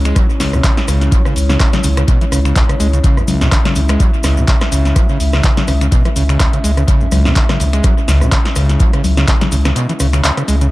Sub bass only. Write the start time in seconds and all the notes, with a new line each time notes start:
Already playing: C#2
0.40 C#2
0.88 C#2
1.36 C#2
1.84 C#2
2.32 C#2
2.80 C#2
3.28 C#2
3.76 C#2
4.24 C#2
4.72 C#2
5.20 C#2
5.68 C#2
6.16 C#2
6.64 C#2
7.12 C#2
7.60 C#2
8.08 C#2
8.56 C#2
9.04 C#2
9.52 C#2
10.00 C#2
10.48 C#2